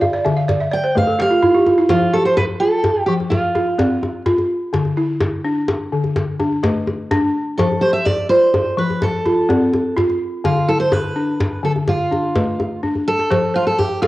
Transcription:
0.00 0.25 F4 medium
0.00 0.21 D5 medium
0.00 0.12 E5 medium
0.00 0.24 F5 medium
0.00 djembe bass medium
0.13 0.35 D5 medium
0.25 0.72 D3 medium
0.25 0.47 E5 medium
0.25 djembe slap soft
0.25 djembe tone medium
0.37 0.59 F5 medium
0.48 0.70 D5 medium
0.48 djembe slap medium
0.48 djembe bass medium
0.60 0.82 E5 medium
0.72 0.94 D5 medium
0.72 0.95 G5 medium
0.84 1.06 C5 medium
0.84 djembe slap soft
0.95 1.43 A3 medium
0.95 1.18 B4 soft
0.95 1.20 F5 medium
0.95 djembe slap soft
0.95 djembe tone medium
0.95 djembe bass medium
1.07 1.29 A4 medium
1.19 1.41 G4 medium
1.19 1.87 F5 medium
1.19 djembe slap medium
1.30 1.41 F4 medium
1.42 1.65 E4 medium
1.42 1.65 F4 medium
1.42 djembe slap soft
1.42 djembe bass medium
1.54 1.77 G4 medium
1.66 1.88 F4 medium
1.66 djembe slap soft
1.66 djembe tone medium
1.78 2.00 E4 medium
1.78 djembe slap soft
1.89 2.37 F3 medium
1.89 2.14 F4 medium
1.89 djembe slap medium
1.89 djembe bass medium
2.02 djembe tone medium
2.13 2.84 G4 medium
2.13 2.25 A4 medium
2.13 djembe slap soft
2.25 2.36 C5 medium
2.37 2.43 B4 loud
2.37 djembe slap medium
2.37 djembe tone medium
2.37 djembe bass medium
2.60 3.08 F4 medium
2.60 3.06 A4 medium
2.84 djembe slap medium
2.84 djembe bass medium
3.06 3.55 F3 medium
3.06 3.13 G4 medium
3.20 djembe tone medium
3.30 4.22 F4 medium
3.30 djembe slap medium
3.30 djembe bass medium
3.55 4.25 F4 medium
3.55 djembe tone medium
3.78 4.26 C4 medium
3.78 4.50 D5 soft
3.78 djembe slap medium
3.78 djembe bass medium
4.03 djembe slap soft
4.03 djembe tone medium
4.26 4.74 F4 medium
4.26 djembe slap medium
4.26 djembe bass medium
4.38 djembe tone medium
4.73 5.21 D3 medium
4.73 djembe slap medium
4.73 djembe bass medium
4.85 djembe tone soft
4.97 5.69 E4 medium
4.97 djembe slap soft
5.21 djembe slap medium
5.21 djembe tone medium
5.21 djembe bass medium
5.45 5.92 D4 medium
5.68 djembe slap medium
5.68 djembe tone medium
5.92 6.40 D3 medium
6.04 djembe tone soft
6.16 djembe slap medium
6.16 djembe bass medium
6.40 7.10 D4 medium
6.40 djembe tone medium
6.63 7.11 A3 medium
6.63 7.35 B4 soft
6.63 djembe slap medium
6.63 djembe bass medium
6.87 djembe slap soft
6.87 djembe tone medium
7.11 7.59 D4 medium
7.11 djembe slap medium
7.11 djembe bass medium
7.58 8.06 F3 medium
7.58 7.83 A4 medium
7.58 djembe slap medium
7.58 djembe bass medium
7.72 djembe tone medium
7.81 8.54 G4 medium
7.81 7.93 C5 loud
7.81 djembe slap soft
7.93 8.05 E5 loud
8.05 8.29 D5 loud
8.05 djembe slap medium
8.05 djembe tone medium
8.05 djembe bass medium
8.29 8.78 F4 medium
8.29 8.74 C5 medium
8.54 djembe slap medium
8.54 djembe tone medium
8.54 djembe bass medium
8.77 9.25 F3 medium
8.77 9.03 B4 medium
8.90 djembe tone medium
9.02 9.94 A4 medium
9.02 djembe slap medium
9.02 djembe bass medium
9.26 9.95 F4 medium
9.26 djembe tone medium
9.49 9.97 C4 medium
9.49 10.21 D5 soft
9.49 djembe slap medium
9.49 djembe bass medium
9.73 djembe slap soft
9.73 djembe tone medium
9.96 10.44 F4 medium
9.96 djembe slap medium
9.96 djembe bass medium
10.10 djembe tone medium
10.44 10.92 D3 medium
10.44 10.69 F4 medium
10.44 djembe slap medium
10.44 djembe bass medium
10.57 djembe tone soft
10.68 11.40 E4 medium
10.68 10.79 A4 medium
10.80 10.93 C5 medium
10.80 djembe slap soft
10.92 11.64 B4 loud
10.92 djembe slap medium
10.92 djembe tone medium
10.92 djembe bass medium
11.05 djembe slap soft
11.16 11.64 D4 medium
11.29 djembe slap soft
11.40 djembe slap medium
11.40 djembe tone medium
11.40 djembe bass medium
11.63 12.11 D3 medium
11.63 11.71 A4 medium
11.76 djembe slap soft
11.76 djembe tone soft
11.87 12.79 F4 medium
11.87 djembe slap medium
11.87 djembe bass medium
12.11 12.82 D4 medium
12.11 djembe tone medium
12.24 djembe slap soft
12.35 12.83 A3 medium
12.35 13.07 B4 soft
12.35 djembe slap medium
12.35 djembe bass medium
12.60 djembe slap soft
12.60 djembe tone medium
12.83 13.31 D4 medium
12.83 djembe bass soft
12.95 djembe bass soft
13.08 13.55 A4 loud
13.08 djembe slap soft
13.19 djembe slap soft
13.30 13.78 F3 medium
13.30 13.53 C5 medium
13.30 djembe slap medium
13.30 djembe bass medium
13.54 13.66 F4 loud
13.54 14.07 C5 medium
13.67 13.78 A4 medium
13.78 14.02 G4 loud
13.78 djembe tone medium
13.78 djembe bass medium
14.02 14.07 F4 medium
14.02 14.07 A4 medium
14.02 djembe slap medium

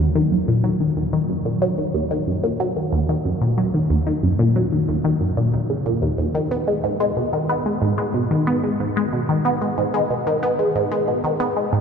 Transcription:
0.15 0.21 D#3 loud
0.32 0.42 F#2 medium
0.48 0.63 A#2 loud
0.64 0.74 F#3 loud
0.81 0.90 D#3 medium
0.97 1.07 D#2 medium
1.13 1.19 D#3 loud
1.29 1.39 F#2 medium
1.45 1.60 A#2 medium
1.62 1.72 F#3 loud
1.78 1.88 D#3 medium
1.94 2.04 D#2 loud
2.11 2.17 D#3 loud
2.27 2.37 F#2 medium
2.44 2.58 A#2 loud
2.60 2.70 F#3 loud
2.76 2.86 D#3 medium
2.92 3.02 D#2 loud
3.09 3.15 D#3 loud
3.25 3.35 F#2 medium
3.41 3.56 A#2 loud
3.58 3.68 F#3 medium
3.74 3.84 D#3 medium
3.90 4.00 D#2 loud
4.07 4.13 D#3 loud
4.23 4.33 F#2 medium
4.39 4.54 A#2 loud
4.56 4.66 F#3 medium
4.72 4.82 D#3 medium
4.89 4.98 D#2 loud
5.04 5.10 D#3 loud
5.21 5.31 F#2 medium
5.37 5.52 A#2 loud
5.53 5.59 D#2 medium
5.70 5.84 C#3 medium
5.86 6.01 A#2 loud
6.02 6.12 D#2 loud
6.18 6.28 D#2 loud
6.35 6.41 D#3 loud
6.51 6.61 B3 loud
6.67 6.77 G#3 medium
6.84 6.94 G#2 loud
7.00 7.06 G#3 loud
7.17 7.26 B2 medium
7.33 7.48 D#3 medium
7.49 7.59 B3 loud
7.66 7.75 G#3 medium
7.82 7.92 G#2 medium
7.98 8.04 G#3 loud
8.14 8.24 B2 medium
8.31 8.46 D#3 loud
8.47 8.57 B3 loud
8.64 8.73 G#3 medium
8.80 8.90 G#2 loud
8.97 9.02 G#3 loud
9.13 9.22 B2 medium
9.29 9.43 D#3 loud
9.45 9.55 B3 loud
9.62 9.71 G#3 medium
9.78 9.87 G#2 loud
9.94 10.00 G#3 loud
10.10 10.20 B2 medium
10.27 10.41 D#3 loud
10.43 10.53 B3 medium
10.59 10.69 G#3 medium
10.75 10.85 G#2 loud
10.92 10.97 G#3 loud
11.08 11.18 B2 medium
11.24 11.39 D#3 loud
11.40 11.50 B3 loud
11.57 11.67 G#3 medium
11.73 11.81 G#2 loud

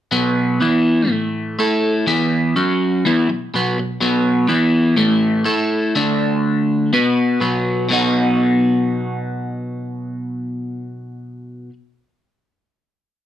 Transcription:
0.11 0.59 B2 medium
0.11 0.59 F#3 medium
0.11 0.59 B3 loud
0.61 1.08 E3 medium
0.61 1.10 B3 medium
0.61 1.10 E4 loud
1.08 1.57 A2 medium
1.08 1.57 E3 loud
1.08 1.58 A3 loud
1.59 2.06 A3 medium
1.59 2.06 E4 medium
1.59 2.07 A4 medium
2.07 2.55 E3 medium
2.07 2.55 B3 medium
2.07 2.55 E4 loud
2.56 3.04 F#3 medium
2.56 3.04 C#4 medium
2.56 3.04 F#4 medium
3.05 3.28 E3 loud
3.05 3.29 B3 loud
3.05 3.29 E4 loud
3.29 3.48 B2 medium
3.29 3.48 F#3 medium
3.54 3.77 B2 medium
3.54 3.78 F#3 loud
3.54 3.78 B3 medium
3.78 3.97 B2 medium
3.78 3.98 F#3 medium
4.01 4.48 B2 medium
4.01 4.48 F#3 medium
4.01 4.48 B3 loud
4.48 4.96 E3 medium
4.48 4.97 B3 loud
4.48 4.97 E4 medium
4.96 5.45 A2 loud
4.96 5.45 E3 loud
4.96 5.44 A3 loud
5.45 5.94 A3 medium
5.45 5.94 E4 medium
5.45 5.94 A4 loud
5.95 6.92 D3 medium
5.95 6.92 A3 medium
5.95 6.92 D4 medium
6.93 7.40 B3 loud
6.93 7.41 F#4 loud
6.93 7.41 B4 loud
7.40 7.87 B2 medium
7.40 7.88 F#3 loud
7.40 7.89 B3 medium
7.89 11.69 B2 medium
7.89 11.70 F#3 medium
7.89 11.71 B3 loud
7.89 11.72 D#4 loud
7.93 11.73 F#4 loud

